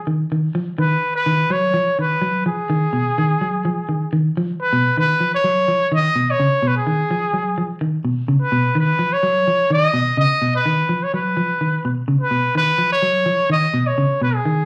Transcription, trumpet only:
0.80 B4
1.16 B4
1.52 C#5
2.00 B4
2.47 G#4
4.62 B4
4.99 B4
5.35 C#5
5.94 D#5
6.30 C#5
6.67 B4
6.77 G#4
8.42 B4
8.79 B4
9.13 C#5
9.73 D#5
10.20 D#5
10.56 B4
11.03 C#5
11.15 B4
12.21 B4
12.57 B4
12.92 C#5
13.52 D#5
13.87 C#5
14.22 B4
14.35 G#4

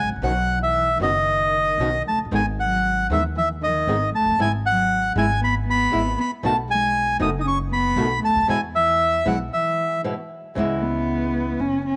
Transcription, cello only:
0.24 F#3
0.61 E3
1.00 D#3
2.07 A3
2.33 G#3
2.59 F#3
3.10 E3
3.36 E3
3.62 D#3
4.14 A3
4.39 G#3
4.66 F#3
5.16 G#3
5.41 B3
5.66 B3
6.18 B3
6.43 A3
6.68 G#3
7.20 D#4
7.38 D#4
7.44 C#4
7.70 B3
8.21 A3
8.47 G#3
8.73 E3
9.25 F#3
9.51 E3
10.56 G#3
10.81 B3
11.60 C#4
11.85 C#4

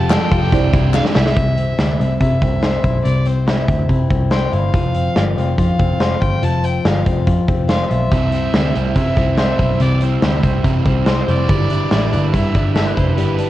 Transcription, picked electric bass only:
Already playing: F1
0.32 F1
0.52 C2
0.73 C2
1.16 C2
1.37 C2
1.79 D2
2.00 C2
2.21 C3
2.42 C2
2.84 B1
3.06 C2
3.69 D2
3.89 C3
4.11 C2
4.53 G1
4.74 F1
5.16 G1
5.37 F1
5.58 F2
5.79 F1
6.22 G1
6.43 F1
6.85 G1
7.07 F1
7.27 F2
7.49 F1
7.91 B1
8.12 C2
8.54 D2
8.75 C2
8.96 C3
9.17 C2
9.59 B1
9.80 C2
10.22 D2
10.43 C2
10.64 C3
10.86 C2
11.28 F1
11.49 G1
11.92 A1
12.13 G1
12.33 G2
12.55 G1
12.97 F1
13.19 G1

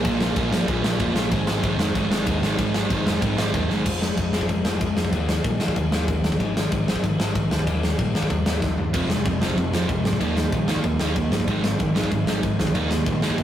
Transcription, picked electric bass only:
0.04 A#1
0.36 A#1
0.51 G#1
0.68 A#1
0.83 A#1
1.00 F1
1.15 A#1
1.32 G#1
1.64 G#1
1.78 F1
1.95 G#1
2.10 G#1
2.26 D#2
2.42 G#1
2.58 G#1
2.90 G#1
3.05 F1
3.22 G#1
3.38 G#1
3.54 D#2
3.69 G1
3.85 F1
4.17 F1
4.32 F1
4.49 F1
4.64 F1
4.80 F1
4.95 F2
5.12 D#2
5.45 A#2
5.60 D#3
5.76 D#2
5.91 D#2
6.08 D#2
6.22 D#2
6.40 G#1
6.71 G#1
6.86 G#1
7.03 G#1
7.19 G#1
7.35 G#1
7.51 D2
7.67 D#2
7.98 A#2
8.14 D#3
8.30 D#2
8.46 D#2
8.62 D#2
8.78 G2
8.94 F1
9.25 F1
9.41 F1
9.57 F1
9.72 F1
9.88 F1
10.04 G#1
10.20 D#2
10.52 A#2
10.68 D#3
10.84 D#2
11.00 D#2
11.15 D#2
11.31 G1
11.48 G#1
11.79 G#1
11.95 G#1
12.11 G#1
12.26 G#1
12.43 G#1
12.59 C2
12.74 D#2
13.06 A#2
13.22 D#3
13.38 D#2

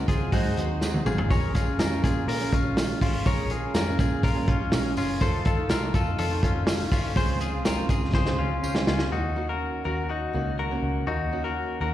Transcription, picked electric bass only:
0.08 C#2
0.32 G#2
0.57 D#2
1.05 G#1
1.30 A#1
1.79 F2
2.04 A#2
2.28 A#2
2.52 A#1
3.01 G#1
3.26 A#1
3.74 F2
3.99 A#2
4.23 A#2
4.48 A#1
4.72 A#1
4.97 F#1
5.21 F1
5.70 C2
5.94 F2
6.19 F2
6.43 F1
6.91 C2
7.16 C#2
7.65 G#1
7.89 C#2
8.13 C#3
8.38 C#2
8.63 C#2
8.87 C#2
9.12 D#2
9.85 D#2
10.34 C#2
10.83 C#2
11.07 D#2
11.81 D#2

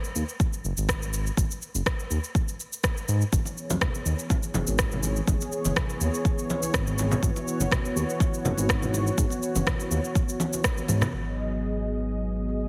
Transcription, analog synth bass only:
0.15 D#2
0.64 F#1
0.77 G#1
1.37 G#1
1.75 F#1
2.10 D#2
3.08 G#2
3.32 G#1
3.70 F#1
4.06 D#2
4.54 F#1
4.68 G#1
5.28 G#1
5.65 F#1
6.01 D#2
6.74 G#1
7.23 G#1
7.60 F#1
7.96 D#2
8.44 F#1
8.57 G#1
9.18 G#1
9.55 F#1
9.91 D#2
10.89 G#2
11.13 G#1

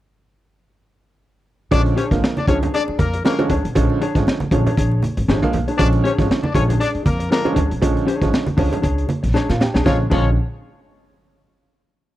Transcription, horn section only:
1.72 D4 D5
1.97 C#4 C#5
2.36 D4 D5
2.48 C#4 C#5
2.73 D4 D5
2.98 A#3 A#4
3.25 A#3 A#4
5.78 D4 D5
6.04 C#4 C#5
6.43 D4 D5
6.54 C#4 C#5
6.80 D4 D5
7.06 A#3 A#4
7.31 A#3 A#4
9.86 G#3 F4 C#5
10.12 G#3 F4 C#5

